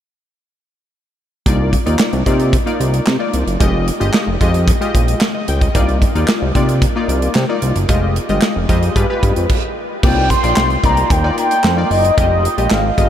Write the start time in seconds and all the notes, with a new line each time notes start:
1.46 C2 A#3 D#4 F4 D5, kick, closed hi-hat
1.73 kick, closed hi-hat
1.86 D#2 A#3 D#4 F4 D5, closed hi-hat
1.99 snare, clap
2.13 C2, closed hi-hat
2.26 C3 A#3 D#4 F4 D5, kick, closed hi-hat
2.40 closed hi-hat
2.53 kick, closed hi-hat
2.66 A#3 D#4 F4 D5, closed hi-hat
2.80 C2, closed hi-hat
2.94 closed hi-hat
3.06 C3, snare, clap
3.19 A#3 D#4 F4 D5
3.33 C2, closed hi-hat
3.47 F#1, closed hi-hat
3.60 F1 G#3 F4 G4 D#5, kick, closed hi-hat
3.88 closed hi-hat
4.00 G1 G#3 F4 G4 D#5, closed hi-hat
4.13 snare, clap
4.27 F1
4.41 F2 G#3 F4 G4 D#5, kick, closed hi-hat
4.54 closed hi-hat
4.68 kick, closed hi-hat
4.81 G#3 F4 G4 D#5, closed hi-hat
4.95 A#1, kick, closed hi-hat
5.08 closed hi-hat
5.21 snare, clap
5.35 D#5
5.48 C#2 G5, closed hi-hat
5.61 D#5, kick, closed hi-hat
5.75 C2 A#3 D#4 F4 D5, kick, closed hi-hat
5.89 closed hi-hat
6.02 kick, closed hi-hat
6.15 D#2 A#3 D#4 F4 D5, closed hi-hat
6.28 snare, clap
6.42 C2
6.55 C3 A#3 D#4 F4 D5, kick, closed hi-hat
6.69 closed hi-hat
6.82 kick, closed hi-hat
6.96 A#3 D#4 F4 D5
7.08 C2, closed hi-hat
7.22 closed hi-hat
7.35 C3, snare, clap
7.49 A#3 D#4 F4 D5
7.62 C2, closed hi-hat
7.76 F#1, closed hi-hat
7.89 F1 G#3 F4 G4 D#5, kick, closed hi-hat
8.16 closed hi-hat
8.29 G1 G#3 F4 G4 D#5, closed hi-hat
8.42 snare, clap
8.56 F1
8.69 F2 G#3 F4 G4 D#5, kick, closed hi-hat
8.83 closed hi-hat
8.96 G2 G#3 F4 G4 B4, kick, closed hi-hat
9.10 G#3 F4 G4 B4
9.23 G2, kick, closed hi-hat
9.36 F2, closed hi-hat
9.49 kick, crash
10.03 C2 A#3 D#4 F4 D5 G5, kick, crash
10.30 C6, kick, closed hi-hat
10.43 A#1 A#3 D#4 F4 D5, closed hi-hat
10.56 C2, snare, clap
10.70 closed hi-hat
10.83 C2 A#3 D#4 F4 D5 A#5, kick, closed hi-hat
10.97 closed hi-hat
11.10 D#2 G5, kick, closed hi-hat
11.23 A#3 D#4 F4 D5
11.38 G5, closed hi-hat
11.51 closed hi-hat
11.64 F2, snare, clap
11.77 A#3 D#4 F4 D5
11.91 F#1 D#5, open hi-hat
12.05 closed hi-hat
12.17 F1 G#3 F4 G4 D#5, kick, closed hi-hat
12.45 closed hi-hat
12.58 A#1 G#3 F4 G4 D#5, closed hi-hat
12.70 G#1 F5, snare, clap
12.98 G1 G#3 F4 G4 D#5, kick, closed hi-hat